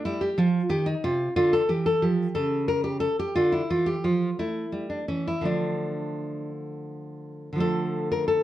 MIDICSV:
0, 0, Header, 1, 2, 480
1, 0, Start_track
1, 0, Key_signature, -1, "minor"
1, 0, Tempo, 668151
1, 977, Time_signature, 6, 3, 24, 8
1, 2906, Tempo, 708383
1, 5878, End_track
2, 0, Start_track
2, 0, Title_t, "Nylon-string guitar"
2, 0, Program_c, 0, 24
2, 36, Note_on_c, 0, 64, 82
2, 43, Note_on_c, 0, 55, 62
2, 149, Note_off_c, 0, 64, 0
2, 151, Note_on_c, 0, 67, 78
2, 207, Note_off_c, 0, 55, 0
2, 266, Note_off_c, 0, 67, 0
2, 271, Note_on_c, 0, 53, 63
2, 276, Note_on_c, 0, 65, 83
2, 439, Note_off_c, 0, 53, 0
2, 496, Note_off_c, 0, 65, 0
2, 499, Note_on_c, 0, 51, 62
2, 501, Note_on_c, 0, 67, 98
2, 618, Note_on_c, 0, 63, 76
2, 619, Note_off_c, 0, 67, 0
2, 671, Note_off_c, 0, 51, 0
2, 738, Note_off_c, 0, 63, 0
2, 747, Note_on_c, 0, 48, 62
2, 747, Note_on_c, 0, 65, 81
2, 916, Note_off_c, 0, 48, 0
2, 968, Note_off_c, 0, 65, 0
2, 978, Note_on_c, 0, 65, 93
2, 979, Note_on_c, 0, 50, 66
2, 1097, Note_off_c, 0, 65, 0
2, 1099, Note_on_c, 0, 69, 86
2, 1153, Note_off_c, 0, 50, 0
2, 1212, Note_on_c, 0, 52, 58
2, 1215, Note_on_c, 0, 67, 85
2, 1219, Note_off_c, 0, 69, 0
2, 1336, Note_on_c, 0, 69, 79
2, 1337, Note_off_c, 0, 67, 0
2, 1388, Note_off_c, 0, 52, 0
2, 1453, Note_on_c, 0, 53, 58
2, 1453, Note_on_c, 0, 67, 83
2, 1457, Note_off_c, 0, 69, 0
2, 1627, Note_off_c, 0, 53, 0
2, 1684, Note_off_c, 0, 67, 0
2, 1687, Note_on_c, 0, 69, 86
2, 1688, Note_on_c, 0, 49, 65
2, 1919, Note_off_c, 0, 69, 0
2, 1926, Note_on_c, 0, 70, 92
2, 2036, Note_off_c, 0, 70, 0
2, 2039, Note_on_c, 0, 67, 76
2, 2153, Note_off_c, 0, 67, 0
2, 2156, Note_on_c, 0, 69, 81
2, 2209, Note_off_c, 0, 49, 0
2, 2285, Note_off_c, 0, 69, 0
2, 2295, Note_on_c, 0, 67, 82
2, 2410, Note_on_c, 0, 65, 92
2, 2416, Note_off_c, 0, 67, 0
2, 2416, Note_on_c, 0, 50, 61
2, 2531, Note_on_c, 0, 64, 74
2, 2535, Note_off_c, 0, 65, 0
2, 2591, Note_off_c, 0, 50, 0
2, 2656, Note_off_c, 0, 64, 0
2, 2660, Note_on_c, 0, 52, 52
2, 2661, Note_on_c, 0, 65, 80
2, 2775, Note_on_c, 0, 67, 73
2, 2781, Note_off_c, 0, 65, 0
2, 2837, Note_off_c, 0, 52, 0
2, 2901, Note_off_c, 0, 67, 0
2, 2903, Note_on_c, 0, 53, 54
2, 2905, Note_on_c, 0, 65, 72
2, 3074, Note_off_c, 0, 53, 0
2, 3130, Note_off_c, 0, 65, 0
2, 3140, Note_on_c, 0, 57, 53
2, 3142, Note_on_c, 0, 64, 72
2, 3313, Note_off_c, 0, 57, 0
2, 3366, Note_on_c, 0, 55, 57
2, 3480, Note_off_c, 0, 64, 0
2, 3483, Note_on_c, 0, 62, 55
2, 3545, Note_off_c, 0, 55, 0
2, 3606, Note_off_c, 0, 62, 0
2, 3609, Note_on_c, 0, 52, 45
2, 3609, Note_on_c, 0, 61, 62
2, 3736, Note_off_c, 0, 61, 0
2, 3739, Note_on_c, 0, 64, 69
2, 3789, Note_off_c, 0, 52, 0
2, 3832, Note_on_c, 0, 50, 45
2, 3839, Note_on_c, 0, 53, 34
2, 3850, Note_on_c, 0, 57, 37
2, 3860, Note_on_c, 0, 62, 61
2, 3863, Note_off_c, 0, 64, 0
2, 4565, Note_off_c, 0, 62, 0
2, 5257, Note_off_c, 0, 50, 0
2, 5265, Note_on_c, 0, 50, 46
2, 5277, Note_off_c, 0, 53, 0
2, 5285, Note_on_c, 0, 53, 38
2, 5286, Note_off_c, 0, 57, 0
2, 5301, Note_on_c, 0, 57, 41
2, 5317, Note_on_c, 0, 69, 87
2, 5655, Note_off_c, 0, 69, 0
2, 5664, Note_on_c, 0, 70, 74
2, 5771, Note_off_c, 0, 70, 0
2, 5774, Note_on_c, 0, 69, 80
2, 5878, Note_off_c, 0, 50, 0
2, 5878, Note_off_c, 0, 53, 0
2, 5878, Note_off_c, 0, 57, 0
2, 5878, Note_off_c, 0, 69, 0
2, 5878, End_track
0, 0, End_of_file